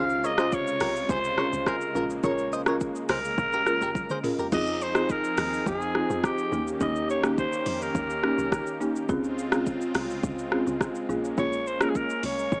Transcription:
Already playing: C#2 C3 C#3 G#3 C#4 F4 G#4 C5 F5
0.10 shaker
0.24 A#4 C#5 D#5, shaker
0.38 C#4 F4 G#4 C5, cross-stick, shaker
0.52 C#5, kick, shaker
0.67 shaker
0.80 C2 G4 A#4, cross-stick, open hi-hat, shaker
0.96 shaker
1.09 C#2 G#4 C5, kick, shaker
1.24 shaker
1.37 C#4 F4 G#4 A#4 C5 C#5, cross-stick
1.53 C#2, shaker
1.66 G#4 A#4 C5, kick, cross-stick, shaker
1.81 shaker
1.95 A#1 C#3 A#3 C#4 F4 G#4 A#4, shaker
2.10 shaker
2.23 A#1 C#4 F4 G#4 A#4 C#5, kick, shaker
2.38 shaker
2.53 C5 D#5, shaker
2.66 C#4 F4 G#4 A#4 C#5, cross-stick, shaker
2.81 kick, shaker
2.95 shaker
3.09 C2 G#4 A#4 C5, cross-stick, open hi-hat, shaker
3.25 shaker
3.38 A#1, kick, shaker
3.53 G4 A#4, shaker
3.66 C#4 F4 G#4 A#4, cross-stick, shaker
3.81 F1 G4 A#4, shaker
3.95 kick, high tom, shaker
4.10 G#4 C5, mid tom, shaker
4.24 C#4 F4 G#4 A#4, mid tom, open hi-hat, shaker
4.39 G4 A#4, floor tom, shaker
4.52 F2 F3 C4 D#4 F4 G#4 D#5, kick, crash, shaker
4.67 shaker
4.81 C5, shaker
4.95 C4 D#4 F4 G#4, cross-stick, shaker
5.09 A#4, kick, shaker
5.24 shaker
5.38 D#2, cross-stick, open hi-hat, shaker
5.53 shaker
5.66 F2 G#4, kick, shaker
5.82 shaker
5.95 C4 D#4 F4 G#4, cross-stick
6.10 F2, shaker
6.24 G4, kick, cross-stick, shaker
6.38 shaker
6.52 D#2 D#3 A#3 C#4 D#4 G4, shaker
6.67 shaker
6.81 D#2 A#3 C#4 D#4 G4 D#5, kick, shaker
6.96 shaker
7.10 C#5, shaker
7.24 A#3 C#4 D#4 G4, cross-stick, shaker
7.38 C5, kick, shaker
7.53 shaker
7.66 F2, open hi-hat, shaker
7.82 A#4, shaker
7.95 D#2, kick, shaker
8.10 shaker
8.23 A#3 C#4 D#4 G4, cross-stick
8.38 C2, shaker
8.52 kick, cross-stick, shaker
8.67 shaker
8.80 A#3 C#4 D#4 G4, shaker
8.96 shaker
9.09 C#2 C#3 G#3 C4 C#4 F4 G#4, kick, shaker
9.24 shaker
9.38 shaker
9.52 C4 C#4 F4 G#4, cross-stick, shaker
9.66 kick, shaker
9.81 shaker
9.95 C2, cross-stick, open hi-hat, shaker
10.10 shaker
10.23 C#2, kick, shaker
10.39 shaker
10.52 C4 C#4 F4 G#4, cross-stick
10.67 C#2, shaker
10.81 kick, cross-stick, shaker
10.95 shaker
11.09 A#1 A#3 C#4 F4 G#4, shaker
11.25 shaker
11.38 A#1 A#3 C#4 F4 G#4 C#5, kick, shaker
11.53 shaker
11.67 C5, shaker
11.81 A#3 C#4 F4 G#4 A#4, cross-stick, shaker
11.90 G#4
11.95 A#4, kick, shaker
12.10 shaker
12.23 C2 C#5, open hi-hat, shaker
12.39 shaker
12.52 A#1, kick, shaker

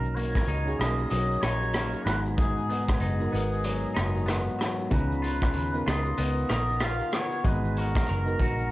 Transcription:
Already playing: B1 D#3 A#3 C#4 D#4 F#4 A#4
0.04 shaker
0.15 A#3 C#5, closed hi-hat, shaker
0.35 kick, cross-stick, shaker
0.47 C#2 D#4, closed hi-hat, shaker
0.65 C#4 D#4 F#4 G#4, shaker
0.79 B1 A#3 C#4 D#4 F#4 A#4 D#5, cross-stick, closed hi-hat, shaker
0.98 shaker
1.10 B1 F#3 D#5, closed hi-hat, shaker
1.31 shaker
1.41 A#1 D#4 C#5, cross-stick, closed hi-hat, shaker
1.62 shaker
1.74 A#3, cross-stick, closed hi-hat, shaker
1.93 shaker
2.04 G#1 G#2 B3 D#4 F#4 B4 A#5, cross-stick, closed hi-hat, shaker
2.25 shaker
2.37 G#2 G#4, kick, closed hi-hat, shaker
2.58 shaker
2.69 B3, closed hi-hat, shaker
2.88 kick, cross-stick, shaker
3.00 F#1 D#4 G#4, closed hi-hat, shaker
3.20 B3 D#4 F#4 A#4, shaker
3.32 G#1 B3 D#4 F#4 A#4, closed hi-hat, shaker
3.52 shaker
3.64 F#3, closed hi-hat, shaker
3.84 shaker
3.95 F#1 D#4, cross-stick, closed hi-hat, shaker
4.17 shaker
4.26 B3, cross-stick, closed hi-hat, shaker
4.47 shaker
4.59 F#3, cross-stick, closed hi-hat, shaker
4.79 shaker
4.90 C#2 C#3 B3 D#4 F4 B4 A#5, kick, closed hi-hat, shaker
5.11 shaker
5.22 F4, closed hi-hat, shaker
5.42 kick, cross-stick, shaker
5.54 D#2, closed hi-hat, shaker
5.73 B3 D#4 F4 A#4, shaker
5.85 C#2 B3 D#4 F4 A#4 D#5, cross-stick, closed hi-hat, shaker
6.05 shaker
6.18 C#2 B3, closed hi-hat, shaker
6.37 shaker
6.49 A#1 A#4 D#5, cross-stick, closed hi-hat, shaker
6.69 shaker
6.80 F4 F5, cross-stick, closed hi-hat, shaker
6.99 shaker
7.12 B3 C#5, cross-stick, closed hi-hat, shaker
7.31 shaker
7.44 G#1 G#3 B3 D#4 F#4 B4 A#5, kick, closed hi-hat, shaker
7.65 shaker
7.77 F#4 A#4, closed hi-hat, shaker
7.95 kick, cross-stick, shaker
8.07 F#1 A#4, closed hi-hat, shaker
8.25 B3 D#4 F#4 A#4, shaker
8.38 A#1 B3 D#4 F#4 A#4, kick, closed hi-hat, shaker
8.42 F#4
8.58 shaker

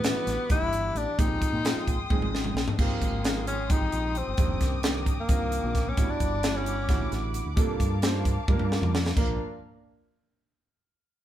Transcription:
Already playing: A2 G3 B3 F#5 B5 D6
0.04 E3 G3 B3 D4 F#4, snare, closed hi-hat
0.15 muted fingered electric bass stroke
0.27 A1, snare, closed hi-hat
0.50 E3 G3 B3 D4 E4 G4, muted fingered electric bass stroke, kick, closed hi-hat
0.61 G1
0.73 closed hi-hat
0.95 A1 D4, closed hi-hat
1.18 A#1 F3 G#3 C4 D#4 G4 G5 C6 D#6, kick, closed hi-hat
1.42 kick, closed hi-hat
1.53 A#2
1.64 F3 G#3 C4 D#4 F4, snare, closed hi-hat
1.76 muted fingered electric bass stroke
1.87 A#1, kick, closed hi-hat
2.10 F3 G#3 C4 D#4 G#4, muted fingered electric bass stroke, kick, high tom
2.20 G#1, high tom
2.35 snare
2.45 mid tom
2.54 A#1, snare
2.68 floor tom
2.78 A#1 F3 G#3 A#3 C4 D#4 G4 G5 C6 D#6, kick, crash
3.01 G#1, kick, closed hi-hat
3.24 F3 G#3 C4 D#4 G#4, snare, closed hi-hat
3.47 C#4, closed hi-hat
3.70 A#1 F3 G#3 C4 D#4 G4, kick, closed hi-hat
3.81 A#1
3.92 A#1, closed hi-hat
4.15 C4, closed hi-hat
4.27 G1
4.37 F1 D#3 A#3 C4 D4 G4 A#4 D6, kick, closed hi-hat
4.60 C2, kick, snare, closed hi-hat
4.83 D#3 A#3 C4 D4 G4, snare, closed hi-hat
5.06 kick, closed hi-hat
5.20 A#3
5.29 C2 D#3 A#3 C4 D4 F4, kick, closed hi-hat
5.41 C2
5.52 closed hi-hat
5.64 A#1
5.75 kick, snare, closed hi-hat
5.88 C#4
5.97 A1 G3 B3 D4 E4 F#4 F#5 B5, kick, closed hi-hat
6.10 D4
6.20 G1, kick, closed hi-hat
6.43 G3 B3 D4 E4 F#4, snare, closed hi-hat
6.56 C#4
6.66 closed hi-hat
6.88 A1 D3 G3 B3 E4 F#4, kick, snare, closed hi-hat
7.01 A1
7.11 A1, snare, closed hi-hat
7.34 closed hi-hat
7.45 D2
7.56 C2 G3 A#3 D4 F4 A4 F5 A5, kick, closed hi-hat
7.80 G2, kick, closed hi-hat
8.02 G3 A#3 D4 F4 C5, snare, closed hi-hat
8.25 kick, closed hi-hat
8.48 G2 G3 A#3 D4 F4 A#4, kick
8.59 G2, high tom
8.72 snare
8.82 F2, mid tom
8.95 snare
9.06 snare
9.16 A#1 F3 A#3 D4 F4 A#4 D5 F5, kick, crash

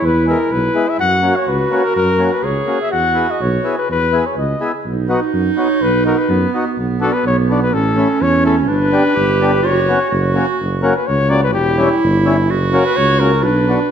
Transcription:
Already playing: E4
0.02 E2 B4
0.26 G#3 B3 E4 A#4
0.51 B1 B4
0.74 G#3 B3 E4
0.89 E5
1.00 F#2 F#4 F#5
1.22 A#3 C#4 F#4
1.36 C#5
1.48 C#2 B4
1.70 A#3 C#4 F#4
1.84 A#4
1.96 F#2 A#4
2.18 A#3 C#4 F#4
2.33 B4
2.43 C#2 G#4 C#5
2.66 A#3 C#4 F#4
2.82 E5
2.92 E2 F#4 F#5
3.14 B3 E4 G#4
3.31 D#5
3.41 B1 C#5
3.64 B3 E4 G#4
3.78 B4
3.89 E2 B4
4.12 B3 E4 G#4
4.26 C#5
4.37 C#2 D#5
4.60 B3 E4 G#4
4.85 B1 D#4
5.09 B3 D#4 F#4
5.33 F#2
5.56 B3 D#4 F#4 C#5
5.81 B1 B4
6.05 B3 D#4 F#4 A#4
6.19 B4
6.29 F#2 B3
6.54 B3 D#4 F#4
6.77 B1 B3
7.00 B3 D4 F#4 A4
7.13 B4
7.25 B1 C#5
7.49 B3 D4 F#4 D5
7.63 B4
7.73 A1 C#4 A4
7.96 A3 C#4 E4
8.21 E2 C#5
8.43 A3 C#4 E4 A4
8.68 G1 D4 B4
8.91 B3 D4 G4
9.15 G1 G4
9.40 B3 D4 G4
9.63 F#1 F#4 C#5
9.88 B3 C#4 F#4
10.10 F#1 F#4
10.34 A#3 C#4 F#4
10.60 F#1
10.82 A#3 C#4 F#4 A#4
10.96 B4
11.07 C#2 C#5
11.29 A#3 C#4 F#4 D5
11.43 B4
11.54 E1 E4 G4
11.77 G3 C#4 E4
12.03 G1
12.25 G3 C#4 E4
12.51 F#1 F#4
12.72 A#3 C#4 F#4 A#4
12.85 B4
12.97 C#2 C#5
13.20 A#3 C#4 F#4 A#4
13.44 B1 D4 B4
13.68 B3 D4 F#4

